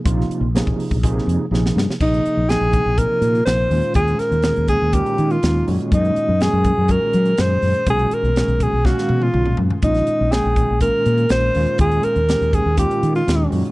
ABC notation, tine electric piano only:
X:1
M:4/4
L:1/8
Q:1/4=122
K:Bbm
V:1 name="Tine electric piano" clef=bass
[C,F,B,EF]2 [C,F,B,EA]2 [C,F,B,EA]2 [C,F,B,EA]2 | [C,F,B,EA]2 [C,F,B,E=g]2 [C,F,B,EB]2 [C,F,B,EF] [B,,E,A,DF]- | [B,,E,A,DF]2 [B,,E,A,DA]2 [B,,E,A,DB]2 [B,,E,A,DE] [B,,E,A,DG]- | [B,,E,A,DG]2 [B,,E,A,DG]2 [B,,E,A,DG]2 [B,,E,A,DA]2 |
[^A,,^D,_A,^C^F]2 [^A,,D,_A,CF]2 [^A,,D,_A,C^e]2 [^A,,D,_A,C^E]2 | [B,,E,A,DF]2 [B,,E,A,D=g]2 [B,,E,A,DF]2 [B,,E,A,DF] [B,,E,A,DF]- | [B,,E,A,DF]2 [B,,E,A,D=G]2 [B,,E,A,DF]2 [B,,E,A,DG] [B,,E,A,D_G] |]